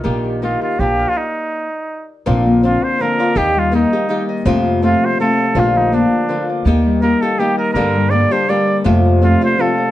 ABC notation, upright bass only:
X:1
M:3/4
L:1/8
Q:"Swing" 1/4=163
K:Eb
V:1 name="Upright bass" clef=bass
B,,,4 B,,,2 | z6 | [K:Bb] B,,,4 z2 | E,,4 z2 |
F,,4 z2 | B,,,4 z2 | E,,4 z2 | G,,4 z2 |
F,,4 z2 |]